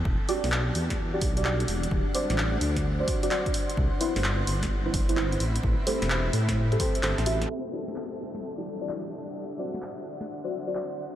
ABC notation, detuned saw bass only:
X:1
M:4/4
L:1/16
Q:"Swing 16ths" 1/4=129
K:Em
V:1 name="Detuned saw bass" clef=bass
E,,, z2 B,,,3 E,,4 B,,,4 E,,, z | D,,, z2 A,,,3 D,,4 z6 | C,, z2 G,,,3 G,,,4 G,,,4 A,,, z | A,,, z2 E,,,3 A,,4 z2 G,,, A,,,3 |
z16 | z16 |]